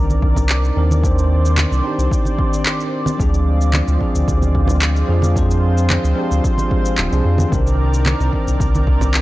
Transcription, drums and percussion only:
0.10 high conga, cabasa
0.22 kick
0.36 low conga, cabasa
0.49 clap, cabasa
0.64 cabasa
0.91 high conga, cabasa
1.03 kick, cabasa
1.19 cabasa
1.45 cabasa
1.58 clap, high conga, cabasa
1.72 cabasa
1.99 cabasa
2.11 kick, cabasa
2.25 high conga, cabasa
2.39 kick
2.53 cabasa
2.66 clap, cabasa
2.80 cabasa
3.06 high conga, cabasa
3.20 kick, cabasa
3.34 cabasa
3.61 cabasa
3.73 clap, high conga, cabasa
3.88 cabasa
4.01 kick
4.15 cabasa
4.28 kick, cabasa
4.42 high conga, cabasa
4.55 kick
4.67 low conga, cabasa
4.82 clap, cabasa
4.96 cabasa
5.22 high conga, cabasa
5.36 kick, cabasa
5.51 cabasa
5.78 cabasa
5.90 clap, high conga, cabasa
6.05 cabasa
6.32 cabasa
6.44 kick, cabasa
6.58 high conga, cabasa
6.71 kick
6.85 cabasa
6.98 clap, cabasa
7.13 cabasa
7.38 high conga, cabasa
7.52 kick, cabasa
7.67 cabasa
7.94 cabasa
8.06 clap, high conga, cabasa
8.21 cabasa
8.33 kick
8.48 cabasa
8.60 kick, cabasa
8.75 high conga, cabasa
8.87 kick
9.01 low conga, cabasa
9.14 clap, cabasa

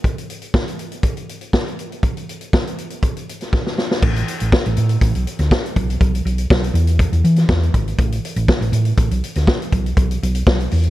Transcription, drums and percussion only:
0.04 kick, closed hi-hat
0.18 closed hi-hat
0.30 closed hi-hat
0.42 closed hi-hat
0.54 kick, snare
0.68 closed hi-hat
0.79 closed hi-hat
0.92 closed hi-hat
1.03 kick, closed hi-hat
1.17 closed hi-hat
1.29 closed hi-hat
1.41 closed hi-hat
1.53 kick, snare
1.68 closed hi-hat
1.79 closed hi-hat
1.92 closed hi-hat
2.03 kick, closed hi-hat
2.17 closed hi-hat
2.29 closed hi-hat
2.41 closed hi-hat
2.53 kick, snare
2.67 closed hi-hat
2.78 closed hi-hat
2.90 closed hi-hat
3.03 kick, closed hi-hat
3.16 closed hi-hat
3.29 closed hi-hat
3.41 snare, closed hi-hat
3.53 kick, snare
3.67 snare
3.78 snare
3.91 snare
4.02 kick, crash
4.16 closed hi-hat
4.28 closed hi-hat
4.40 closed hi-hat
4.52 kick, snare
4.66 closed hi-hat
4.77 closed hi-hat
4.89 closed hi-hat
5.01 kick, closed hi-hat
5.15 closed hi-hat
5.27 closed hi-hat
5.39 snare, closed hi-hat
5.51 kick, snare
5.66 closed hi-hat
5.76 kick, closed hi-hat
5.90 closed hi-hat
6.01 kick, closed hi-hat
6.15 closed hi-hat
6.26 closed hi-hat
6.38 closed hi-hat
6.50 kick, snare
6.64 closed hi-hat
6.75 closed hi-hat
6.87 closed hi-hat
6.99 kick, closed hi-hat
7.13 closed hi-hat
7.24 closed hi-hat
7.36 snare, closed hi-hat
7.49 kick, snare
7.63 closed hi-hat
7.74 kick, closed hi-hat
7.88 closed hi-hat
7.99 kick, closed hi-hat
8.12 closed hi-hat
8.25 closed hi-hat
8.36 closed hi-hat
8.48 kick, snare
8.62 closed hi-hat
8.73 closed hi-hat
8.85 closed hi-hat
8.97 kick, closed hi-hat
9.11 closed hi-hat
9.24 closed hi-hat
9.35 snare, closed hi-hat
9.47 kick, snare
9.62 closed hi-hat
9.72 kick, closed hi-hat
9.86 closed hi-hat
9.97 kick, closed hi-hat
10.11 closed hi-hat
10.23 closed hi-hat
10.35 closed hi-hat
10.47 kick, snare
10.60 closed hi-hat
10.71 open hi-hat
10.83 closed hi-hat

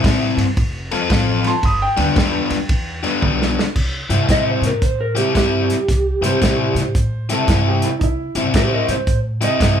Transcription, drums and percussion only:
0.04 kick, snare, ride
0.38 snare, ride
0.57 kick, ride
0.91 snare, ride
1.10 kick, snare, ride
1.44 snare, ride
1.63 kick, snare, ride
1.97 snare, ride
2.16 kick, snare, ride
2.50 snare, ride
2.69 kick, ride
3.04 snare, ride
3.22 kick, high tom
3.42 snare
3.59 snare
3.76 kick, crash
4.10 snare, closed hi-hat
4.29 kick, snare, closed hi-hat
4.63 snare, closed hi-hat
4.82 kick, closed hi-hat
5.16 snare, closed hi-hat
5.35 kick, snare, closed hi-hat
5.70 snare, closed hi-hat
5.88 kick, snare, closed hi-hat
6.24 snare, closed hi-hat
6.42 kick, snare, closed hi-hat
6.76 snare, closed hi-hat
6.95 kick, closed hi-hat
7.29 snare, closed hi-hat
7.48 kick, snare, closed hi-hat
7.82 snare, closed hi-hat
8.01 kick, closed hi-hat
8.35 snare, closed hi-hat
8.54 kick, snare, closed hi-hat
8.89 snare, closed hi-hat
9.07 kick, closed hi-hat
9.42 snare, closed hi-hat
9.60 kick, snare, closed hi-hat

